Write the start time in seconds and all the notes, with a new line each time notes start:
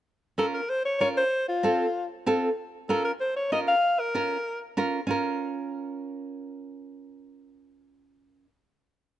0.38 C#4 F4 A4 A#4
0.54 A#4
0.70 C5
0.85 C#5
1.00 C#4 F4 A#4 C#5
1.17 C5
1.48 F4
1.63 C4 F4 A4
2.26 C4 F4 A4
2.89 C#4 F4 A4 A#4
3.05 A#4
3.20 C5
3.36 C#5
3.52 C#4 F4 A#4 D#5
3.68 F5
3.99 A#4
4.15 C#4 F4 A#4
4.77 C#4 F4 A#4
5.07 C#4 F4 A#4